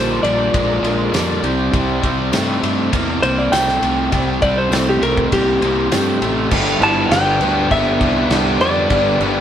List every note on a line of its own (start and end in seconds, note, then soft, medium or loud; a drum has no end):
0.00 0.19 A#1 medium
0.00 0.24 A#2 medium
0.00 0.24 D3 medium
0.00 0.23 F3 medium
0.00 0.21 G3 medium
0.00 0.25 A#3 medium
0.00 1.42 A#3 medium
0.00 0.25 D4 medium
0.00 1.42 D4 medium
0.00 1.42 F4 medium
0.00 0.25 A#4 medium
0.00 0.23 C5 medium
0.00 1.42 D5 medium
0.23 0.49 A#1 medium
0.23 0.50 A#2 medium
0.23 0.39 F3 medium
0.23 0.50 G3 medium
0.23 0.40 A#3 medium
0.23 1.99 D5 medium
0.23 ride medium
0.27 0.39 D4 medium
0.27 0.38 A#4 medium
0.39 0.71 F3 soft
0.39 0.70 A#3 soft
0.39 0.69 D4 soft
0.39 0.68 A#4 medium
0.53 0.79 A#1 medium
0.53 0.81 A#2 medium
0.53 0.81 G#3 medium
0.53 kick loud
0.53 ride medium
0.69 0.82 F3 soft
0.69 0.84 A#3 soft
0.69 0.85 D4 soft
0.69 0.84 A#4 medium
0.82 1.08 A#1 medium
0.82 1.10 A#2 medium
0.82 1.14 F3 medium
0.82 1.10 G#3 medium
0.82 1.14 A#3 medium
0.82 1.14 D4 medium
0.82 ride medium
0.87 1.15 A#4 medium
1.12 1.38 F2 medium
1.12 1.43 A#2 medium
1.12 1.44 D3 loud
1.12 1.42 F3 medium
1.12 1.40 G3 medium
1.12 1.43 A#3 loud
1.12 1.44 D4 medium
1.12 1.45 A#4 loud
1.12 snare loud
1.12 ride medium
1.12 tambourine medium
1.42 1.69 C2 medium
1.42 1.70 C3 medium
1.42 1.72 G3 medium
1.42 3.80 G3 medium
1.42 3.80 C4 medium
1.42 1.73 C4 medium
1.42 3.80 E4 medium
1.42 1.73 E4 medium
1.42 1.74 G4 medium
1.42 3.81 C5 medium
1.42 ride medium
1.73 1.99 C2 medium
1.73 2.03 C3 medium
1.73 2.01 G3 medium
1.73 2.03 C4 loud
1.73 2.04 E4 medium
1.73 2.04 G4 medium
1.73 kick loud
1.73 ride medium
2.01 2.29 C2 medium
2.01 2.29 C3 medium
2.01 2.18 G3 medium
2.01 2.19 C4 medium
2.01 2.19 E4 medium
2.01 kick medium
2.01 ride medium
2.06 2.17 G4 medium
2.18 2.34 C4 soft
2.18 2.34 E4 medium
2.18 2.33 G4 medium
2.32 2.58 G2 medium
2.32 2.63 C3 medium
2.32 2.61 G3 loud
2.32 2.60 A3 loud
2.32 2.62 C4 medium
2.32 2.64 E4 loud
2.32 2.64 G4 medium
2.32 snare loud
2.32 ride loud
2.32 tambourine loud
2.61 2.89 G2 medium
2.61 2.89 C3 medium
2.61 2.78 G3 medium
2.61 2.90 A3 medium
2.61 2.79 C4 medium
2.61 2.77 E4 medium
2.61 ride medium
2.66 2.76 G4 medium
2.77 3.09 C4 medium
2.77 3.08 E4 medium
2.77 3.06 G4 medium
2.92 3.19 E2 loud
2.92 3.20 C3 medium
2.92 3.20 A#3 loud
2.92 kick loud
2.92 ride loud
3.07 3.22 C4 soft
3.07 3.23 E4 soft
3.07 3.23 G4 soft
3.22 3.48 C2 medium
3.22 3.50 C3 medium
3.22 3.51 G3 medium
3.22 3.50 A#3 medium
3.22 3.52 C4 medium
3.22 3.52 E4 medium
3.22 3.53 G4 medium
3.22 3.37 C5 medium
3.22 ride medium
3.38 3.53 D5 medium
3.52 3.78 C2 medium
3.52 3.67 C3 medium
3.52 3.68 G3 medium
3.52 3.80 A3 medium
3.52 3.68 C4 medium
3.52 3.68 E4 medium
3.52 3.66 G4 medium
3.52 4.40 G5 loud
3.52 snare loud
3.52 ride medium
3.52 tambourine loud
3.67 3.82 C4 soft
3.67 3.83 G4 medium
3.67 snare soft
3.82 4.08 C2 medium
3.82 4.09 C3 medium
3.82 4.10 G3 medium
3.82 4.10 A3 medium
3.82 6.49 C4 medium
3.82 4.11 C4 medium
3.82 6.49 E4 medium
3.82 4.12 E4 medium
3.82 6.49 G4 medium
3.82 4.12 G4 medium
3.82 6.49 C5 medium
3.82 ride medium
4.11 4.38 C2 loud
4.11 4.42 C3 medium
4.11 4.39 G3 medium
4.11 4.40 C4 medium
4.11 4.41 E4 medium
4.11 4.42 G4 medium
4.11 kick loud
4.11 ride medium
4.40 4.68 C2 medium
4.40 4.69 C3 medium
4.40 4.56 G3 medium
4.40 4.57 C4 medium
4.40 4.57 E4 medium
4.40 4.55 G4 medium
4.40 4.57 D5 medium
4.40 kick medium
4.40 ride medium
4.56 4.71 C4 medium
4.56 4.71 E4 soft
4.56 4.71 G4 medium
4.56 4.87 C5 medium
4.71 4.97 C2 medium
4.71 5.02 C3 medium
4.71 4.99 G3 medium
4.71 4.99 A3 medium
4.71 5.01 C4 medium
4.71 5.02 E4 medium
4.71 5.03 G4 medium
4.71 snare loud
4.71 ride medium
4.71 tambourine loud
4.89 5.03 G4 medium
5.01 5.27 C2 medium
5.01 5.29 C3 medium
5.01 5.17 G3 medium
5.01 5.29 A3 medium
5.01 5.17 C4 medium
5.01 5.15 E4 medium
5.01 5.14 G4 medium
5.01 5.32 A#4 medium
5.01 ride medium
5.15 5.48 C4 soft
5.15 5.46 E4 medium
5.15 5.45 G4 medium
5.15 kick medium
5.32 5.58 C2 medium
5.32 5.59 C3 medium
5.32 5.59 A#3 medium
5.32 6.48 G4 loud
5.32 kick medium
5.32 ride medium
5.46 5.60 C4 soft
5.46 5.61 E4 soft
5.46 5.62 G4 soft
5.60 5.88 C2 medium
5.60 5.89 C3 medium
5.60 5.90 G3 medium
5.60 5.89 A#3 medium
5.60 5.90 C4 medium
5.60 5.91 E4 medium
5.60 ride medium
5.90 6.18 G2 medium
5.90 6.21 C3 medium
5.90 6.19 G3 medium
5.90 6.19 A3 loud
5.90 6.20 C4 medium
5.90 6.21 E4 medium
5.90 6.22 G4 medium
5.90 snare loud
5.90 ride medium
5.90 tambourine medium
6.20 6.47 A1 medium
6.20 6.49 C3 medium
6.20 6.50 G3 medium
6.20 6.49 A3 medium
6.20 6.51 C4 medium
6.20 6.52 E4 medium
6.20 6.52 G4 medium
6.20 ride medium
6.50 6.79 G1 loud
6.50 6.81 G2 loud
6.50 6.81 D3 medium
6.50 6.79 G3 medium
6.50 6.80 B3 loud
6.50 8.88 B3 medium
6.50 6.81 D4 loud
6.50 8.89 D4 medium
6.50 6.82 G4 loud
6.50 8.89 G4 medium
6.50 8.88 D5 medium
6.50 kick loud
6.50 crash loud
6.50 crash medium
6.67 snare soft
6.80 7.08 G1 loud
6.80 7.10 G2 medium
6.80 7.10 D3 medium
6.80 7.10 G3 medium
6.80 7.11 B3 medium
6.80 7.11 D4 medium
6.80 7.09 E4 medium
6.80 7.11 G4 medium
6.80 7.11 A5 loud
6.80 crash medium
7.10 7.38 G1 medium
7.10 7.41 G2 medium
7.10 7.41 D3 medium
7.10 7.38 G3 medium
7.10 7.40 B3 medium
7.10 7.41 D4 medium
7.10 7.68 D4 medium
7.10 7.42 G4 medium
7.10 7.73 G5 loud
7.10 snare loud
7.10 crash medium
7.40 7.67 D2 medium
7.40 7.68 G2 loud
7.40 7.69 D3 loud
7.40 7.55 G3 medium
7.40 7.56 B3 medium
7.40 7.55 D4 medium
7.40 7.54 G4 medium
7.40 crash medium
7.55 7.98 G3 soft
7.55 8.00 B3 soft
7.55 8.01 D4 medium
7.55 8.00 G4 medium
7.69 7.98 G1 medium
7.69 7.98 G2 medium
7.69 7.99 D3 medium
7.69 8.00 G3 medium
7.69 8.00 B3 medium
7.69 8.57 B3 medium
7.69 8.01 D4 loud
7.69 8.01 G4 medium
7.69 8.63 E5 loud
7.69 kick medium
7.69 crash medium
7.99 8.28 C2 medium
7.99 8.29 G2 loud
7.99 8.29 D3 loud
7.99 8.15 G3 medium
7.99 8.16 B3 medium
7.99 8.15 D4 medium
7.99 8.14 G4 medium
7.99 kick loud
7.99 crash medium
8.15 8.30 G3 soft
8.15 8.31 B3 soft
8.15 8.31 D4 soft
8.15 8.30 G4 medium
8.30 8.57 C2 medium
8.30 8.60 G2 medium
8.30 8.61 D3 medium
8.30 8.58 G3 medium
8.30 8.59 B3 medium
8.30 8.61 D4 medium
8.30 8.62 G4 medium
8.30 snare loud
8.30 crash medium
8.59 8.87 F2 medium
8.59 8.88 G2 medium
8.59 8.89 D3 medium
8.59 8.75 G3 medium
8.59 9.41 G3 medium
8.59 8.90 B3 loud
8.59 8.91 D4 loud
8.59 8.74 G4 medium
8.59 9.41 D5 medium
8.59 crash medium
8.76 8.89 G3 soft
8.76 8.90 B3 soft
8.76 8.90 D4 soft
8.76 8.90 G4 medium
8.90 9.18 G1 loud
8.90 9.20 G2 medium
8.90 9.20 D3 medium
8.90 9.19 G3 medium
8.90 9.20 B3 medium
8.90 9.41 B3 medium
8.90 9.20 D4 medium
8.90 9.41 D4 medium
8.90 9.41 G4 medium
8.90 9.21 G4 medium
8.90 9.41 D5 medium
8.90 kick loud
8.90 crash medium
9.19 9.41 G1 medium
9.19 9.41 G2 medium
9.19 9.41 D3 loud
9.19 9.41 G3 medium
9.19 9.41 B3 medium
9.19 9.41 D4 medium
9.19 crash medium
9.23 9.41 G4 medium